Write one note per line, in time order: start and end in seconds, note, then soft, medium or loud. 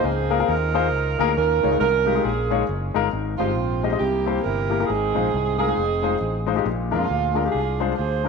0.00 0.41 C#2 loud
0.00 0.27 G#2 medium
0.00 0.44 D#4 medium
0.04 0.88 C4 medium
0.04 0.48 F4 medium
0.04 0.49 G#4 loud
0.30 0.36 A#3 medium
0.30 0.36 F4 medium
0.30 0.36 G#4 medium
0.30 0.36 A#4 medium
0.39 0.51 A#3 medium
0.39 0.51 F4 medium
0.39 0.52 G#4 medium
0.39 0.52 A#4 medium
0.48 0.92 D#2 medium
0.48 1.33 D#4 medium
0.48 1.33 F4 medium
0.48 1.36 A#4 medium
0.74 0.85 A#3 medium
0.74 0.86 F4 medium
0.74 0.85 G#4 medium
0.74 0.86 C5 medium
0.92 1.15 C#2 medium
1.19 1.34 D2 medium
1.19 1.30 A#3 medium
1.19 1.30 F4 medium
1.19 1.30 G#4 medium
1.19 1.31 A#4 loud
1.36 1.59 D#2 medium
1.36 2.03 D#3 medium
1.36 1.79 C#4 medium
1.36 1.79 F4 medium
1.36 1.78 A#4 medium
1.63 1.78 C#2 medium
1.63 1.68 G#3 medium
1.63 1.69 D#4 medium
1.63 1.69 F4 medium
1.63 1.69 C#5 medium
1.71 1.83 G#3 medium
1.71 1.83 D#4 medium
1.71 1.84 F4 medium
1.71 1.84 C#5 medium
1.80 2.18 C2 loud
1.80 2.23 C#4 medium
1.80 2.23 F4 medium
1.80 2.21 A#4 loud
2.06 2.12 G#3 medium
2.06 2.12 D#4 medium
2.06 2.12 F4 medium
2.06 2.13 G4 medium
2.15 2.27 G#3 medium
2.15 2.27 D#4 medium
2.15 2.28 F4 medium
2.15 2.28 G4 medium
2.24 2.62 A#1 medium
2.24 3.09 C#4 medium
2.24 3.09 F4 medium
2.24 2.68 G#4 medium
2.50 2.62 G#3 medium
2.50 2.62 D#4 medium
2.50 2.62 F4 medium
2.50 2.62 C#5 medium
2.69 2.91 F#1 medium
2.94 3.10 G1 medium
2.94 3.06 G#3 medium
2.94 3.06 D#4 medium
2.94 3.06 F4 medium
2.94 3.06 A#4 medium
3.13 3.35 G#1 medium
3.13 3.79 G#2 medium
3.38 3.57 G1 medium
3.38 3.50 G#3 medium
3.38 3.97 C4 medium
3.38 3.50 D#4 medium
3.38 3.96 F4 medium
3.38 3.50 G4 medium
3.38 3.51 C5 medium
3.57 3.94 A#1 medium
3.83 3.89 G#3 medium
3.83 3.89 D#4 medium
3.83 3.89 G4 medium
3.83 3.89 D#5 medium
3.92 4.01 G#3 medium
3.92 4.01 D#4 medium
3.92 4.01 G4 medium
3.92 4.01 D#5 medium
3.99 4.38 C2 medium
3.99 4.68 C3 medium
3.99 4.85 A#3 medium
3.99 4.45 E4 medium
3.99 4.41 G4 medium
4.26 4.38 A#3 medium
4.26 4.38 E4 medium
4.26 4.38 G4 medium
4.26 4.38 C5 medium
4.43 4.83 G1 medium
4.43 4.87 E4 medium
4.43 4.86 G4 medium
4.43 4.88 A#4 loud
4.70 4.76 A#3 medium
4.70 4.76 E4 medium
4.70 4.77 G4 medium
4.70 4.77 A#4 medium
4.80 4.89 A#3 medium
4.80 4.89 E4 medium
4.80 4.89 G4 medium
4.80 4.89 A#4 medium
4.86 5.12 G#1 medium
4.86 5.56 G#2 medium
4.86 5.59 C4 medium
4.86 5.59 D#4 medium
4.86 5.58 G#4 medium
5.15 5.31 A#1 medium
5.15 5.26 G#3 medium
5.15 5.26 D#4 medium
5.15 5.26 F4 medium
5.15 5.27 C5 medium
5.34 5.71 C2 medium
5.58 5.65 G#3 medium
5.58 6.45 C4 medium
5.58 5.65 D#4 medium
5.58 6.45 D#4 medium
5.58 5.65 F4 medium
5.58 6.44 G#4 medium
5.58 5.65 A#4 medium
5.67 5.80 G#3 medium
5.67 5.80 D#4 medium
5.67 5.80 F4 medium
5.67 5.81 G#4 medium
5.77 6.15 F1 medium
6.03 6.14 G#3 medium
6.03 6.14 D#4 medium
6.03 6.15 F4 medium
6.03 6.15 C5 medium
6.21 6.59 A1 medium
6.47 6.53 G#3 medium
6.47 6.53 D#4 medium
6.47 6.53 F4 medium
6.47 6.54 C5 medium
6.55 6.65 G#3 medium
6.55 6.65 D#4 medium
6.55 6.66 F4 medium
6.55 6.66 G4 medium
6.64 6.94 A#1 medium
6.64 7.32 A#2 medium
6.91 7.07 F2 medium
6.91 7.03 G#3 medium
6.91 7.77 G#3 medium
6.91 7.03 D4 medium
6.91 7.53 D4 medium
6.91 7.03 F4 medium
6.91 7.50 F4 medium
6.91 7.03 A#4 medium
7.10 7.47 D2 medium
7.35 7.41 G#3 medium
7.35 7.41 D4 medium
7.35 7.42 F4 medium
7.35 7.42 A#4 medium
7.44 7.57 G#3 medium
7.44 7.57 D4 medium
7.44 7.57 F4 medium
7.44 7.57 G4 medium
7.52 7.92 C2 medium
7.52 8.29 D4 medium
7.52 7.97 F4 medium
7.52 7.94 G#4 medium
7.80 7.91 G#3 medium
7.80 7.91 D4 medium
7.80 7.92 F4 medium
7.80 7.92 C5 medium
7.96 8.29 D2 medium
7.96 8.29 F4 medium
7.96 8.29 G#4 medium
7.96 8.29 C5 medium
8.24 8.29 G#3 medium
8.24 8.29 D4 medium
8.24 8.29 F4 medium